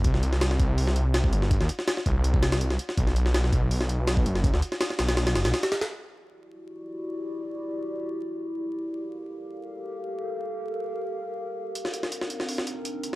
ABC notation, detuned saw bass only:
X:1
M:4/4
L:1/16
Q:1/4=164
K:Clyd
V:1 name="Detuned saw bass" clef=bass
C,,6 C,,8 G,,,2- | G,,, _E,, z4 C,,8 z2 | B,,,6 B,,,8 F,,,2- | F,,, D,, z4 B,,,4 F,,, B,,, z4 |
z16 | z16 | z16 | z16 |
z16 |]